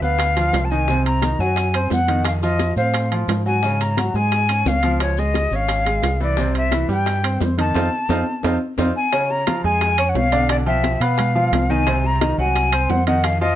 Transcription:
0.01 fingered electric bass D2, grand piano B3 B4, flute F5, high conga, maracas
0.19 high bongo, high conga, high timbale, maracas
0.36 grand piano F3 F4, high bongo, high conga, high timbale, maracas
0.53 fingered electric bass C2, high bongo, low bongo, high conga, high timbale, low timbale, maracas
0.65 flute A5
0.70 grand piano D#3 D#4, flute G#5, high bongo, high conga, maracas
0.88 grand piano C3 C4, high bongo, high conga, maracas
1.05 flute A#5, high bongo, high conga, high timbale
1.22 grand piano D#3 D#4, high bongo, high conga, high timbale, low timbale, maracas
1.39 fingered electric bass F#2, grand piano F#3 F#4, flute G#5, high conga, maracas
1.56 high bongo, high conga, high timbale, maracas
1.74 grand piano C4 C5, high bongo, high conga, high timbale
1.90 fingered electric bass F2, flute F#5, high bongo, low bongo, high conga, low timbale, maracas
2.08 grand piano D#3 D#4, high bongo, high conga, high timbale, maracas
2.25 flute F5, high bongo, high conga, high timbale, maracas
2.42 grand piano F3 F4, flute D#5, high bongo, high conga, maracas
2.59 high bongo, high conga, high timbale, low timbale, maracas
2.76 fingered electric bass A2, grand piano C4 C5, flute F5, high conga, maracas
2.94 high bongo, high conga, high timbale, maracas
3.11 grand piano F3 F4, high bongo, high conga, high timbale
3.28 fingered electric bass G#2, high bongo, low bongo, high conga, high timbale, low timbale, maracas
3.46 grand piano F#3 F#4, flute G#5, high bongo, high conga, maracas
3.63 grand piano C#3 C#4, high bongo, high conga, maracas
3.80 flute A#5, high bongo, high conga, high timbale, maracas
3.97 grand piano F#3 F#4, high bongo, high conga, high timbale, low timbale, maracas
4.14 fingered electric bass G#2, grand piano G#3 G#4, flute G#5, high conga, maracas
4.32 high bongo, high conga, high timbale, maracas
4.49 grand piano C#4 C#5, high bongo, high conga, high timbale, maracas
4.65 fingered electric bass C#2, flute F5, high bongo, low bongo, high conga, low timbale, maracas
4.83 grand piano F3 F4, high bongo, high conga, high timbale, maracas
5.00 flute C#5, high bongo, high timbale, maracas
5.17 grand piano G#3 G#4, flute D#5, high bongo, high conga, maracas
5.34 high bongo, high conga, high timbale, low timbale, maracas
5.51 fingered electric bass G#1, grand piano C#4 C#5, high conga, maracas
5.55 flute F5
5.68 high bongo, high conga, high timbale, maracas
5.85 grand piano G#3 G#4, high bongo, high conga, high timbale
6.03 fingered electric bass C2, high bongo, low bongo, high conga, high timbale, low timbale, maracas
6.20 grand piano E3 E4, flute D5, high bongo, high conga, maracas
6.37 grand piano C3 C4, high bongo, high conga, maracas
6.54 flute E5, high bongo, high conga, high timbale
6.72 grand piano E3 E4, high bongo, high conga, high timbale, low timbale, maracas
6.88 fingered electric bass G2, grand piano G3 G4, flute G5, high conga, maracas
7.06 high bongo, high conga, high timbale, maracas
7.23 grand piano C4 C5, high bongo, high conga, high timbale, maracas
7.40 fingered electric bass F2, high bongo, low bongo, high conga, low timbale, maracas
7.57 grand piano D#3 D#4, flute A5, high bongo, high conga, high timbale, maracas
7.74 fingered electric bass F2, grand piano C4 D#4 F4, low bongo, high conga, high timbale, maracas
8.09 fingered electric bass F2, grand piano C4 D#4 F4, low bongo, high conga, high timbale, maracas
8.43 fingered electric bass F2, grand piano C4 D#4 F4, low bongo, high conga, high timbale, maracas
8.78 fingered electric bass F2, grand piano C4 D#4 F4, low bongo, high conga, high timbale, maracas
8.96 flute G#5
9.12 grand piano C#3 C#4 C#5, high bongo, high conga, high timbale
9.30 flute A#5, high bongo, high conga
9.47 grand piano F3 F4 F5, high bongo, high conga, high timbale, low timbale
9.64 fingered electric bass F2, grand piano G#3 G#4 G#5, flute G#5
9.81 high bongo, high conga, high timbale
9.98 grand piano C#4 C#5 C#6, high conga, high timbale
10.09 flute F#5
10.14 fingered electric bass B1, flute F5, high bongo, low bongo, high conga, low timbale
10.32 grand piano D3 D4 D5, high bongo, high conga, high timbale
10.49 flute D5, high bongo, high conga, high timbale
10.66 grand piano F3 F4 G5, flute E5, high bongo, high conga
10.84 high bongo, high conga, high timbale, low timbale
11.00 fingered electric bass B2, grand piano B3 B4 B5, flute F5, high timbale
11.18 high bongo, high conga, low conga, high timbale
11.35 grand piano F3 F4 F5, high conga, low conga
11.52 fingered electric bass C2, high bongo, low bongo, high conga, high timbale, low timbale
11.70 grand piano D#3 D#4 D#5, flute G#5, high bongo, high conga
11.87 grand piano C3 C4 C5, high bongo, high timbale
12.04 flute A#5, high bongo, high conga
12.21 grand piano D#3 D#4 D#5, high bongo, high conga, high timbale, low timbale
12.38 fingered electric bass C2, grand piano F#3 F#4 F#5, flute G#5
12.56 high bongo, high conga, high timbale
12.72 grand piano C4 C5 C6, high conga, high timbale
12.89 fingered electric bass F2, flute F#5, high bongo, low bongo, high conga, low timbale
13.07 grand piano D#3 D#4 D#5, flute F#5, high bongo, high conga, high timbale
13.24 flute F5, high bongo, high timbale
13.41 grand piano F3 F4 F5, flute D#5, high bongo, high conga

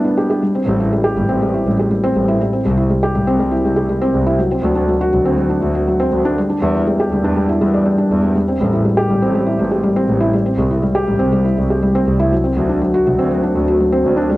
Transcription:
Already playing: felt piano G3 B3 D4 E4
0.05 felt piano D4
0.17 felt piano G4
0.30 felt piano G4
0.42 felt piano G3
0.55 felt piano C4
0.66 double bass section A1, felt piano G3
0.80 felt piano E4
0.93 felt piano G3
1.04 felt piano G4
1.16 double bass section G1, felt piano G3
1.28 double bass section A1, felt piano C4
1.42 felt piano G3
1.54 felt piano E4
1.65 double bass section A1, felt piano G3
1.79 felt piano G4
1.91 felt piano G3
2.04 felt piano C4
2.15 double bass section A1, felt piano G3
2.28 felt piano E4
2.41 felt piano G3
2.53 felt piano C4
2.65 double bass section C2, felt piano G3
2.77 felt piano E4
2.90 felt piano G3
3.03 felt piano G4
3.15 double bass section A1, felt piano G3
3.27 double bass section C2, felt piano C4
3.39 felt piano G3
3.51 felt piano E4
3.64 double bass section C2, felt piano G3
3.76 felt piano G4
3.89 felt piano G3
4.02 felt piano C4
4.13 double bass section C2, felt piano G3
4.27 felt piano E4
4.39 felt piano F#3
4.51 felt piano C4
4.63 double bass section D2, felt piano F#3
4.75 felt piano D4
4.88 felt piano F#3
5.01 felt piano F#4
5.13 double bass section C2, felt piano F#3
5.25 double bass section D2, felt piano C4
5.37 felt piano F#3
5.50 felt piano D4
5.62 double bass section D2, felt piano F#3
5.75 felt piano F#4
5.88 felt piano F#3
6.00 felt piano C4
6.11 double bass section D2, felt piano F#3
6.25 felt piano D4
6.38 felt piano G3
6.50 felt piano D4
6.61 double bass section E2, felt piano G3
6.74 felt piano E4
6.87 felt piano G3
7.00 felt piano G4
7.10 double bass section D2, felt piano G3
7.23 double bass section E2, felt piano D4
7.36 felt piano G3
7.49 felt piano E4
7.61 double bass section E2, felt piano G3
7.74 felt piano D5
7.86 felt piano G3
7.98 felt piano D4
8.10 double bass section E2, felt piano G3
8.23 felt piano G3
8.35 felt piano G3
8.48 felt piano C4
8.60 double bass section A1, felt piano G3
8.73 felt piano E4
8.85 felt piano G3
8.97 felt piano G4
9.10 double bass section G1, felt piano G3
9.22 double bass section A1, felt piano C4
9.35 felt piano G3
9.47 felt piano E4
9.59 double bass section A1, felt piano G3
9.71 felt piano G4
9.84 felt piano G3
9.96 felt piano C4
10.08 double bass section A1, felt piano G3
10.21 felt piano E4
10.33 felt piano G3
10.46 felt piano C4
10.58 double bass section C2, felt piano G3
10.71 felt piano E4
10.83 felt piano G3
10.95 felt piano G4
11.07 double bass section A1, felt piano G3
11.19 double bass section C2, felt piano C4
11.32 felt piano G3
11.45 felt piano E4
11.57 double bass section C2, felt piano G3
11.70 felt piano G4
11.82 felt piano G3
11.95 felt piano C4
12.06 double bass section C2, felt piano G3
12.20 felt piano E4
12.32 felt piano F#3
12.44 felt piano C4
12.56 double bass section D2, felt piano F#3
12.69 felt piano D4
12.82 felt piano F#3
12.94 felt piano F#4
13.06 double bass section C2, felt piano F#3
13.19 double bass section D2, felt piano C4
13.31 felt piano F#3
13.44 felt piano D4
13.55 double bass section D2, felt piano F#3
13.68 felt piano F#4
13.80 felt piano F#3
13.92 felt piano C4
14.05 double bass section D2, felt piano F#3
14.17 felt piano D4
14.30 felt piano G3

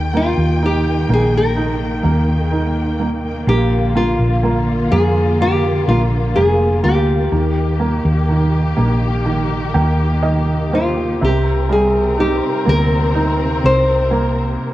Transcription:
Already playing: fingered electric bass D#2, string section D#3 A#3 G5, felt piano D#3, nylon-string guitar G4
0.14 felt piano A#3, nylon-string guitar F4
0.37 fingered electric bass D#2
0.62 felt piano D#4, nylon-string guitar G4
1.09 fingered electric bass A#1, felt piano A#3
1.14 nylon-string guitar G#4
1.38 nylon-string guitar A#4
1.57 felt piano D#4
2.03 fingered electric bass D#2, felt piano A#3
2.44 nylon-string guitar G#4
2.52 felt piano D#4
3.00 felt piano A#3
3.47 fingered electric bass A#1, string section D3 F4, felt piano A#3, nylon-string guitar G4
3.95 felt piano A#3, nylon-string guitar F4
4.19 fingered electric bass A#1
4.43 felt piano A#3
4.91 fingered electric bass F2, felt piano A#3, nylon-string guitar G#4
5.41 felt piano A#3, nylon-string guitar G4
5.88 fingered electric bass A#1, felt piano A#3, nylon-string guitar F4
6.36 fingered electric bass F1, felt piano A#3, nylon-string guitar G#4
6.83 fingered electric bass D2, felt piano A#3, nylon-string guitar G4
7.32 fingered electric bass D#2, felt piano D#3, string section D#3 G4
7.80 felt piano A#3
8.05 fingered electric bass D#2
8.29 felt piano D#3
8.77 fingered electric bass A#1, felt piano A#3
9.26 felt piano D#3
9.74 fingered electric bass D#2, felt piano A#3 G5
10.22 felt piano D#3 D#5
10.72 felt piano A#3 C5, nylon-string guitar F4
11.21 fingered electric bass C2, felt piano C3, string section C3 C4 A#4, nylon-string guitar G4
11.69 felt piano G3, nylon-string guitar G#4
12.18 felt piano D#4, nylon-string guitar G4
12.66 fingered electric bass D2, felt piano A#3, nylon-string guitar A#4
13.14 felt piano D#4
13.64 fingered electric bass C2, nylon-string guitar C5
14.11 felt piano A#3

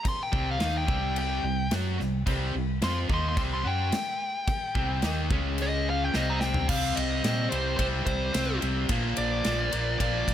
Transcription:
0.05 lead electric guitar C6, muted overdriven electric guitar stroke, muted fingered electric bass stroke, kick, crash
0.23 lead electric guitar G5
0.32 fingered electric bass C2, overdriven electric guitar C3 G3 C4, kick
0.51 lead electric guitar F5
0.59 fingered electric bass D#2, overdriven electric guitar D#3 A#3 D#4, snare, crash
0.77 lead electric guitar G5
0.87 fingered electric bass C2, overdriven electric guitar C3 G3 C4, kick
1.16 lead electric guitar G5, crash
1.43 fingered electric bass C2, overdriven electric guitar C3 G3
1.71 fingered electric bass F#2, overdriven electric guitar F#3 C#4 F#4, snare, crash
1.99 fingered electric bass C2, overdriven electric guitar C3 G3, snare
2.26 fingered electric bass C2, overdriven electric guitar C3 G3 C4, kick, crash
2.55 fingered electric bass C2, overdriven electric guitar C3 G3
2.82 fingered electric bass F2, overdriven electric guitar F3 C4 F4, lead electric guitar C6, snare, crash
3.09 fingered electric bass D#2, overdriven electric guitar D#3 A#3 D#4, kick
3.14 lead electric guitar C6
3.29 lead electric guitar C6
3.37 fingered electric bass C2, overdriven electric guitar C3 G3 C4, kick, crash
3.54 lead electric guitar C6
3.64 fingered electric bass F#2, overdriven electric guitar F#3 C#4 F#4, lead electric guitar G5
3.92 muted fingered electric bass stroke, muted overdriven electric guitar stroke, snare, crash
4.47 muted fingered electric bass stroke, muted overdriven electric guitar stroke, kick, crash
4.75 fingered electric bass C2, overdriven electric guitar C3 G3 C4, kick
5.02 fingered electric bass D#2, overdriven electric guitar D#3 A#3 D#4, snare, crash
5.30 fingered electric bass C#2, overdriven electric guitar C#3 G#3 C#4, kick
5.58 crash
5.62 lead electric guitar D#5
5.90 lead electric guitar F5
6.04 lead electric guitar G5
6.14 fingered electric bass C2, overdriven electric guitar C3 G3 C4, lead electric guitar D#5, snare
6.30 lead electric guitar A#5
6.41 lead electric guitar G5, snare
6.54 floor tom
6.69 fingered electric bass C2, overdriven electric guitar C3 G3 C4, lead electric guitar F5, kick, crash
6.96 fingered electric bass C2, lead electric guitar D#5, ride
7.24 fingered electric bass A#2, overdriven electric guitar C3 G3 C4, snare, ride
7.50 fingered electric bass C2, overdriven electric guitar C3 G3 C4, lead electric guitar C5, ride
7.77 fingered electric bass C2, overdriven electric guitar C3 G3 C4, lead electric guitar C5, kick, ride
8.06 fingered electric bass C2, lead electric guitar C5, kick, ride
8.33 fingered electric bass C2, overdriven electric guitar C3 G3 C4, snare, ride
8.61 fingered electric bass C2, overdriven electric guitar C3 G3 C4, ride
8.89 fingered electric bass A#1, overdriven electric guitar A#2 F3 A#3, kick, ride
9.17 fingered electric bass A#1, lead electric guitar D5, ride
9.44 fingered electric bass A#1, overdriven electric guitar A#2 F3 A#3, snare, ride
9.72 fingered electric bass A#1, overdriven electric guitar A#2 F3 A#3, ride
10.00 fingered electric bass A#1, overdriven electric guitar A#2 F3 A#3, lead electric guitar D5, kick, ride
10.28 fingered electric bass A#1, kick, ride

